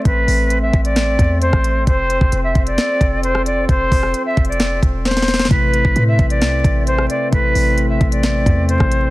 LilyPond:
<<
  \new Staff \with { instrumentName = "Flute" } { \time 4/4 \key a \minor \tempo 4 = 132 b'4~ b'16 e''8 d''4~ d''16 c''4 | c''4~ c''16 e''8 d''4~ d''16 c''8 d''8 | c''4~ c''16 e''8 d''4~ d''16 c''4 | b'4~ b'16 e''8 d''4~ d''16 c''8 d''8 |
b'4~ b'16 e''8 d''4~ d''16 c''4 | }
  \new Staff \with { instrumentName = "Synth keys" } { \time 4/4 \key a \minor r1 | r1 | r1 | <c a e' b'>1 |
<c a e' a'>1 | }
  \new Staff \with { instrumentName = "Woodwind section" } { \time 4/4 \key a \minor <a c'>1 | <f a'>1~ | <f a'>1 | <a c'>1~ |
<a c'>1 | }
  \new Staff \with { instrumentName = "808-style bass" } { \clef bass \time 4/4 \key a \minor a,,8 a,,4 a,,4 e,8. a,,8. | f,,8. f,,16 f,,8 f,,8 r8 f,,4. | f,,8 f,,8 r8 f,,4 e,,4. | a,,8. a,,16 a,8 a,,8 c,8 a,,4 r8 |
a,,8 a,,4 a,,4 e,8. a,,8. | }
  \new DrumStaff \with { instrumentName = "Drums" } \drummode { \time 4/4 <hh bd>8 hho8 hh8 <hh bd>16 hh16 <hh sn>8 <hh bd>8 hh16 <bd ss>16 hh8 | <hh bd>8 hh16 bd16 hh8 <hh bd>16 hh16 <hh sn>8 <hh bd>8 hh16 ss16 hh8 | <hh bd>8 <hho bd>16 ss16 \tuplet 3/2 { hh16 r16 r16 <hh bd>16 hh16 hh16 } <hh sn>8 <hh bd>8 <hh sn>32 sn32 <hh sn>32 sn32 <hh sn>32 sn32 sn32 sn32 | <hh bd>8 hh16 bd16 hh8 <hh bd>16 hh16 <hh sn>8 <hh bd>8 hh16 ss16 hh8 |
<hh bd>8 hho8 hh8 <hh bd>16 hh16 <hh sn>8 <hh bd>8 hh16 <bd ss>16 hh8 | }
>>